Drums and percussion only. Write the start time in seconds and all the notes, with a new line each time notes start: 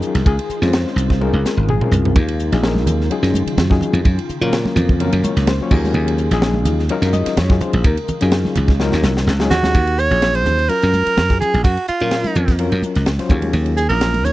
0.02 hi-hat pedal
0.15 snare, ride bell
0.26 kick, ride bell
0.39 ride bell
0.50 hi-hat pedal
0.63 snare, ride bell
0.73 snare, ride bell
0.87 snare
0.98 hi-hat pedal, ride bell
1.10 kick, snare
1.22 high tom
1.45 snare, hi-hat pedal
1.69 mid tom
1.81 mid tom
1.92 floor tom, hi-hat pedal
2.05 floor tom
2.16 kick, ride bell, low conga
2.28 ride bell
2.40 hi-hat pedal
2.52 snare, ride bell
2.64 snare
2.75 snare, high conga
2.87 hi-hat pedal, ride bell, low conga
3.01 snare
3.11 ride bell
3.24 snare, ride bell
3.34 hi-hat pedal, high conga
3.47 ride bell
3.58 snare, ride bell, high conga
3.71 kick, snare
3.81 hi-hat pedal, low conga
3.93 ride bell, high conga
4.05 kick, ride bell, low conga
4.19 ride bell
4.29 hi-hat pedal
4.42 ride bell
4.53 snare, ride bell
4.65 snare, high conga
4.77 hi-hat pedal, ride bell, low conga
4.89 kick
5.00 ride bell
5.12 ride bell
5.24 hi-hat pedal, high conga
5.37 snare, ride bell
5.47 snare, ride bell, high conga
5.71 kick, crash, low conga
5.84 snare, high conga
5.94 low conga
6.08 ride bell
6.18 hi-hat pedal
6.31 snare, ride bell
6.42 snare
6.54 high conga
6.65 hi-hat pedal, ride bell, low conga
6.79 snare
6.89 ride bell
7.03 snare, ride bell
7.13 hi-hat pedal, high conga
7.26 snare, ride bell
7.37 snare, ride bell, high conga
7.50 kick, snare
7.60 hi-hat pedal, low conga
7.73 ride bell, high conga
7.84 kick, ride bell, low conga
7.97 ride bell
8.08 hi-hat pedal, low conga
8.21 snare, ride bell
8.32 snare, ride bell
8.45 snare, high conga
8.55 hi-hat pedal, ride bell, low conga
8.68 kick, snare
8.80 snare
8.92 snare, high conga
9.03 snare, hi-hat pedal, high conga
9.17 snare
9.27 snare, high conga
9.40 snare
9.51 snare, hi-hat pedal, low conga
9.63 snare, high conga
9.75 kick, ride, low conga
9.87 ride
9.98 hi-hat pedal
10.12 ride
10.22 snare, ride
10.35 ride
10.46 hi-hat pedal, low conga
10.59 ride
10.69 ride
10.82 snare, ride
10.93 hi-hat pedal, high conga
11.07 ride
11.17 snare, ride, high conga
11.30 kick, snare, ride
11.41 hi-hat pedal, low conga
11.54 ride, high conga
11.64 kick, ride, low conga
11.77 ride
11.88 hi-hat pedal
12.00 ride
12.11 snare, ride
12.24 snare, ride, high conga
12.35 hi-hat pedal, low conga
12.48 kick, snare, ride
12.59 ride
12.72 ride
12.83 hi-hat pedal, high conga
12.95 snare, ride
13.06 snare, ride, high conga
13.19 snare, ride
13.29 kick, hi-hat pedal, low conga
13.42 ride, high conga
13.53 ride, low conga
13.66 ride
13.77 hi-hat pedal
13.90 ride
14.01 snare, ride
14.14 ride, high conga
14.25 hi-hat pedal, low conga